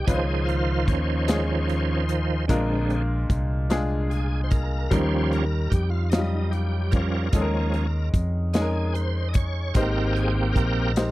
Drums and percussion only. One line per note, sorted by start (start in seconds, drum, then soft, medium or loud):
0.08 kick medium
0.08 closed hi-hat medium
0.49 closed hi-hat soft
0.88 kick medium
0.88 closed hi-hat soft
1.28 snare medium
1.28 closed hi-hat medium
1.69 closed hi-hat soft
2.09 closed hi-hat soft
2.49 kick medium
2.49 closed hi-hat medium
2.90 closed hi-hat soft
3.30 kick medium
3.30 closed hi-hat soft
3.70 snare loud
3.70 closed hi-hat medium
4.11 closed hi-hat soft
4.51 kick medium
4.51 closed hi-hat soft
4.91 kick loud
4.91 closed hi-hat medium
5.33 closed hi-hat soft
5.72 kick medium
5.72 closed hi-hat soft
6.12 snare loud
6.12 closed hi-hat medium
6.53 closed hi-hat soft
6.92 kick medium
6.92 closed hi-hat soft
7.33 kick loud
7.33 closed hi-hat medium
7.74 closed hi-hat soft
8.14 kick medium
8.14 closed hi-hat soft
8.54 snare medium
8.54 closed hi-hat medium
8.95 closed hi-hat soft
9.34 kick medium
9.34 closed hi-hat soft
9.75 kick loud
9.75 closed hi-hat medium
10.16 closed hi-hat soft
10.56 kick medium
10.56 closed hi-hat soft
10.96 snare loud
10.96 closed hi-hat medium